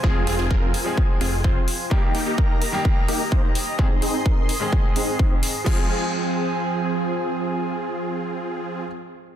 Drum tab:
CC |--------|--------|--------|x-------|
HH |-o-o-o-o|-o-o-o-o|-o-o-o-o|--------|
BD |o-o-o-o-|o-o-o-o-|o-o-o-o-|o-------|

CC |--------|
HH |--------|
BD |--------|